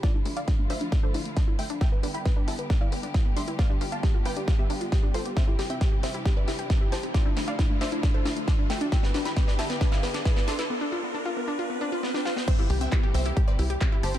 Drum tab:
CC |----------------|----------------|----------------|----------------|
HH |x-oxx-oxx-oxx-ox|x-oxx-oxx-oxx-ox|x-oxx-oxx-oxx-ox|x-oxx-oxx-oxx-ox|
CP |----------------|----------------|----------------|----------------|
SD |o---o---o---o---|o---o---o---o---|o---o---o---o---|o-o-o-o-o-o-o-o-|
BD |o---o---o---o---|o---o---o---o---|o---o---o---o---|o---o---o---o---|

CC |----------------|----------------|----------------|x---------------|
HH |x-oxx-oxx-oxx-ox|x-oxx-oxx-oxx-ox|----------------|x-oxx-oxx-oxx-ox|
CP |----------------|----------------|----------------|----x-------x---|
SD |o-o-o-o-o-o-o-o-|oooooooooooooooo|------------oooo|----------------|
BD |o---o---o---o---|o---o---o---o---|----------------|o---o---o---o---|